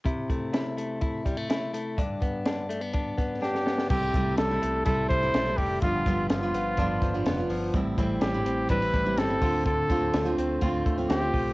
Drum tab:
CC |----------------|----------------|x---------------|----------------|
HH |x-x-x-x-x-x-x-x-|x-x-x-x-x-x-----|--x-x-x-x-x-x-o-|x-x-x-x-x-x-x-o-|
SD |----o-----o-o---|----o-----o-oooo|----o-------o---|----o-----o-o---|
BD |o-o-----o-o-----|o-o-----o-o-----|o-o-----o-o---o-|o-o-----o-o-----|

CC |----------------|----------------|
HH |x-x-x-x-x-x-x-o-|x-x-x-x-x-x-x-o-|
SD |----o-----o-o---|----o-------o---|
BD |o-o-----o-o---o-|o-o-----o-o---o-|